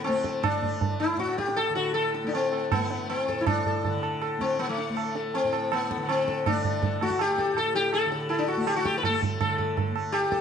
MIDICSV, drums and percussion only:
0, 0, Header, 1, 2, 480
1, 0, Start_track
1, 0, Tempo, 378310
1, 546, Time_signature, 4, 2, 24, 8
1, 6300, Tempo, 368550
1, 13390, End_track
2, 0, Start_track
2, 0, Title_t, "Tabla"
2, 58, Note_on_c, 9, 60, 63
2, 185, Note_off_c, 9, 60, 0
2, 309, Note_on_c, 9, 37, 55
2, 436, Note_off_c, 9, 37, 0
2, 554, Note_on_c, 9, 60, 98
2, 554, Note_on_c, 9, 64, 89
2, 681, Note_off_c, 9, 60, 0
2, 681, Note_off_c, 9, 64, 0
2, 794, Note_on_c, 9, 64, 65
2, 921, Note_off_c, 9, 64, 0
2, 1031, Note_on_c, 9, 63, 79
2, 1031, Note_on_c, 9, 64, 75
2, 1158, Note_off_c, 9, 63, 0
2, 1158, Note_off_c, 9, 64, 0
2, 1273, Note_on_c, 9, 60, 59
2, 1400, Note_off_c, 9, 60, 0
2, 1513, Note_on_c, 9, 62, 76
2, 1635, Note_off_c, 9, 62, 0
2, 1635, Note_on_c, 9, 62, 61
2, 1759, Note_on_c, 9, 37, 66
2, 1762, Note_off_c, 9, 62, 0
2, 1883, Note_on_c, 9, 62, 64
2, 1885, Note_off_c, 9, 37, 0
2, 1996, Note_on_c, 9, 60, 68
2, 2010, Note_off_c, 9, 62, 0
2, 2123, Note_off_c, 9, 60, 0
2, 2240, Note_on_c, 9, 62, 57
2, 2367, Note_off_c, 9, 62, 0
2, 2479, Note_on_c, 9, 60, 67
2, 2606, Note_off_c, 9, 60, 0
2, 2725, Note_on_c, 9, 62, 58
2, 2852, Note_off_c, 9, 62, 0
2, 2966, Note_on_c, 9, 63, 79
2, 3092, Note_off_c, 9, 63, 0
2, 3208, Note_on_c, 9, 60, 60
2, 3335, Note_off_c, 9, 60, 0
2, 3446, Note_on_c, 9, 60, 83
2, 3446, Note_on_c, 9, 64, 75
2, 3573, Note_off_c, 9, 60, 0
2, 3573, Note_off_c, 9, 64, 0
2, 3687, Note_on_c, 9, 62, 58
2, 3814, Note_off_c, 9, 62, 0
2, 3928, Note_on_c, 9, 60, 67
2, 4055, Note_off_c, 9, 60, 0
2, 4169, Note_on_c, 9, 37, 56
2, 4296, Note_off_c, 9, 37, 0
2, 4398, Note_on_c, 9, 60, 105
2, 4398, Note_on_c, 9, 64, 90
2, 4525, Note_off_c, 9, 60, 0
2, 4525, Note_off_c, 9, 64, 0
2, 4644, Note_on_c, 9, 64, 70
2, 4771, Note_off_c, 9, 64, 0
2, 4879, Note_on_c, 9, 63, 85
2, 4879, Note_on_c, 9, 64, 73
2, 5006, Note_off_c, 9, 63, 0
2, 5006, Note_off_c, 9, 64, 0
2, 5113, Note_on_c, 9, 60, 57
2, 5240, Note_off_c, 9, 60, 0
2, 5350, Note_on_c, 9, 60, 76
2, 5477, Note_off_c, 9, 60, 0
2, 5593, Note_on_c, 9, 37, 57
2, 5719, Note_off_c, 9, 37, 0
2, 5825, Note_on_c, 9, 60, 67
2, 5952, Note_off_c, 9, 60, 0
2, 6070, Note_on_c, 9, 62, 55
2, 6196, Note_off_c, 9, 62, 0
2, 6304, Note_on_c, 9, 60, 74
2, 6434, Note_off_c, 9, 60, 0
2, 6546, Note_on_c, 9, 62, 51
2, 6676, Note_off_c, 9, 62, 0
2, 6791, Note_on_c, 9, 63, 78
2, 6922, Note_off_c, 9, 63, 0
2, 7033, Note_on_c, 9, 60, 63
2, 7163, Note_off_c, 9, 60, 0
2, 7280, Note_on_c, 9, 60, 81
2, 7411, Note_off_c, 9, 60, 0
2, 7529, Note_on_c, 9, 37, 66
2, 7659, Note_off_c, 9, 37, 0
2, 7761, Note_on_c, 9, 60, 72
2, 7891, Note_off_c, 9, 60, 0
2, 8011, Note_on_c, 9, 37, 64
2, 8141, Note_off_c, 9, 37, 0
2, 8251, Note_on_c, 9, 60, 96
2, 8251, Note_on_c, 9, 64, 92
2, 8381, Note_off_c, 9, 60, 0
2, 8381, Note_off_c, 9, 64, 0
2, 8486, Note_on_c, 9, 64, 73
2, 8616, Note_off_c, 9, 64, 0
2, 8723, Note_on_c, 9, 63, 83
2, 8723, Note_on_c, 9, 64, 74
2, 8853, Note_off_c, 9, 63, 0
2, 8853, Note_off_c, 9, 64, 0
2, 8967, Note_on_c, 9, 60, 59
2, 9084, Note_on_c, 9, 37, 60
2, 9097, Note_off_c, 9, 60, 0
2, 9200, Note_on_c, 9, 60, 75
2, 9214, Note_off_c, 9, 37, 0
2, 9331, Note_off_c, 9, 60, 0
2, 9449, Note_on_c, 9, 37, 63
2, 9580, Note_off_c, 9, 37, 0
2, 9688, Note_on_c, 9, 60, 68
2, 9819, Note_off_c, 9, 60, 0
2, 9928, Note_on_c, 9, 62, 55
2, 10058, Note_off_c, 9, 62, 0
2, 10157, Note_on_c, 9, 60, 77
2, 10287, Note_off_c, 9, 60, 0
2, 10408, Note_on_c, 9, 62, 57
2, 10538, Note_off_c, 9, 62, 0
2, 10647, Note_on_c, 9, 63, 83
2, 10777, Note_off_c, 9, 63, 0
2, 10885, Note_on_c, 9, 60, 56
2, 11015, Note_off_c, 9, 60, 0
2, 11125, Note_on_c, 9, 60, 73
2, 11255, Note_off_c, 9, 60, 0
2, 11366, Note_on_c, 9, 37, 61
2, 11496, Note_off_c, 9, 37, 0
2, 11599, Note_on_c, 9, 60, 67
2, 11599, Note_on_c, 9, 64, 63
2, 11730, Note_off_c, 9, 60, 0
2, 11730, Note_off_c, 9, 64, 0
2, 11848, Note_on_c, 9, 64, 58
2, 11979, Note_off_c, 9, 64, 0
2, 12084, Note_on_c, 9, 60, 92
2, 12084, Note_on_c, 9, 64, 88
2, 12214, Note_off_c, 9, 60, 0
2, 12214, Note_off_c, 9, 64, 0
2, 12324, Note_on_c, 9, 64, 65
2, 12454, Note_off_c, 9, 64, 0
2, 12565, Note_on_c, 9, 63, 79
2, 12565, Note_on_c, 9, 64, 67
2, 12695, Note_off_c, 9, 63, 0
2, 12695, Note_off_c, 9, 64, 0
2, 12800, Note_on_c, 9, 60, 63
2, 12930, Note_off_c, 9, 60, 0
2, 13035, Note_on_c, 9, 60, 76
2, 13165, Note_off_c, 9, 60, 0
2, 13274, Note_on_c, 9, 37, 63
2, 13390, Note_off_c, 9, 37, 0
2, 13390, End_track
0, 0, End_of_file